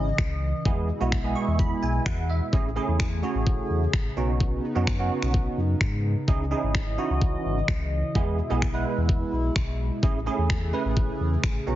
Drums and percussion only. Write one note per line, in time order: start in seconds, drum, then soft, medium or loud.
0.18 finger snap loud
0.18 kick loud
0.65 kick loud
1.12 finger snap loud
1.12 kick loud
1.59 kick loud
2.06 finger snap loud
2.06 kick loud
2.53 kick loud
3.00 finger snap loud
3.00 kick loud
3.47 kick loud
3.93 finger snap loud
3.93 kick loud
4.40 kick loud
4.87 finger snap loud
4.87 kick loud
5.22 finger snap medium
5.34 kick loud
5.81 finger snap loud
5.81 kick loud
6.28 kick loud
6.75 finger snap loud
6.75 kick loud
7.22 kick loud
7.68 finger snap loud
7.68 kick loud
8.15 kick loud
8.62 finger snap loud
8.62 kick loud
9.09 kick loud
9.56 finger snap loud
9.56 kick loud
10.03 kick loud
10.50 finger snap loud
10.50 kick loud
10.97 kick loud
11.44 finger snap loud
11.44 kick loud